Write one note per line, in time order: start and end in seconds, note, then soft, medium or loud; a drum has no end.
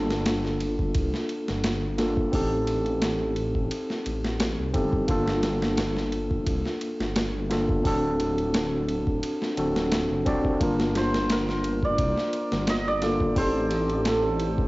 0.00 0.92 G1 medium
0.00 1.94 A#3 medium
0.00 1.95 D4 medium
0.00 1.95 F4 medium
0.00 1.96 A4 medium
0.11 snare soft
0.26 snare loud
0.26 ride medium
0.45 snare soft
0.60 ride medium
0.79 kick medium
0.95 1.12 C2 loud
0.95 kick loud
0.95 ride medium
1.14 snare soft
1.29 ride medium
1.48 2.31 G1 loud
1.48 snare soft
1.64 snare loud
1.64 ride medium
1.98 2.29 A#3 medium
1.98 2.29 D4 medium
1.98 2.29 F4 medium
1.98 2.30 A4 medium
1.98 snare soft
1.98 ride medium
2.17 kick medium
2.32 3.68 A1 loud
2.32 4.70 C4 medium
2.32 4.71 D#4 medium
2.32 4.71 G4 medium
2.32 4.72 A4 medium
2.32 kick loud
2.32 open hi-hat medium
2.67 ride medium
2.86 ride soft
3.02 snare loud
3.02 ride medium
3.36 ride medium
3.55 kick medium
3.71 ride medium
3.90 snare soft
4.06 4.55 A1 medium
4.06 ride medium
4.24 snare soft
4.40 snare loud
4.40 ride medium
4.59 4.73 C2 medium
4.74 5.05 G1 loud
4.74 5.05 C4 medium
4.74 5.05 D#4 medium
4.74 5.05 G4 medium
4.74 5.06 A4 medium
4.74 kick medium
4.74 ride medium
4.93 kick medium
5.07 6.44 G1 loud
5.07 7.46 A#3 medium
5.07 7.46 D4 medium
5.07 7.47 F4 medium
5.07 7.47 A4 medium
5.07 kick loud
5.07 ride medium
5.28 snare medium
5.43 snare medium
5.43 ride medium
5.62 snare medium
5.78 snare loud
5.78 ride medium
5.97 snare soft
6.12 ride medium
6.31 kick medium
6.47 6.63 C2 loud
6.47 kick loud
6.47 ride medium
6.66 snare soft
6.81 ride medium
7.00 7.82 G1 loud
7.00 snare soft
7.16 snare loud
7.16 ride medium
7.50 7.81 A#3 medium
7.50 7.81 D4 medium
7.50 7.81 F4 medium
7.50 7.82 A4 medium
7.50 snare soft
7.50 ride medium
7.69 kick medium
7.83 9.20 D1 loud
7.83 9.53 C4 medium
7.83 9.54 D4 medium
7.83 9.54 F#4 medium
7.83 9.55 A4 medium
7.83 kick loud
7.83 open hi-hat medium
8.20 ride medium
8.38 ride soft
8.54 snare loud
8.54 ride medium
8.88 ride medium
9.07 kick medium
9.23 ride medium
9.42 snare soft
9.57 10.07 D1 medium
9.57 10.22 C4 medium
9.57 10.23 D4 medium
9.57 10.23 F#4 medium
9.57 10.23 A4 medium
9.57 ride medium
9.76 snare soft
9.92 snare loud
9.92 ride medium
10.11 10.24 F#1 medium
10.26 10.57 C2 medium
10.26 10.57 C4 medium
10.26 10.57 D4 medium
10.26 10.57 F#4 medium
10.26 10.57 D5 loud
10.26 kick loud
10.26 ride medium
10.45 kick medium
10.60 11.96 G1 loud
10.60 12.98 A#3 medium
10.60 12.99 D4 medium
10.60 12.99 F4 medium
10.60 12.99 A#4 medium
10.60 kick loud
10.60 ride medium
10.80 snare soft
10.95 13.37 C5 medium
10.95 snare medium
10.95 ride medium
11.14 snare medium
11.30 14.13 A#4 medium
11.30 snare loud
11.30 ride medium
11.49 snare soft
11.64 ride medium
11.83 12.76 D5 loud
11.83 kick medium
11.98 12.15 C2 medium
11.98 kick loud
11.98 ride medium
12.17 snare soft
12.33 ride medium
12.52 13.34 G1 loud
12.52 snare soft
12.67 12.94 D#5 loud
12.67 snare loud
12.67 ride medium
12.88 14.68 D5 loud
13.02 13.33 A#3 medium
13.02 13.33 D4 medium
13.02 13.33 F4 medium
13.02 13.34 A4 medium
13.02 snare soft
13.02 ride medium
13.20 kick medium
13.36 14.68 A1 loud
13.36 14.68 C4 medium
13.36 14.68 D#4 medium
13.36 14.68 G4 medium
13.36 14.68 A4 medium
13.36 14.68 C5 loud
13.36 kick loud
13.36 open hi-hat medium
13.71 ride medium
13.89 ride soft
14.05 14.68 A4 medium
14.05 snare loud
14.05 ride medium
14.39 ride medium
14.58 kick loud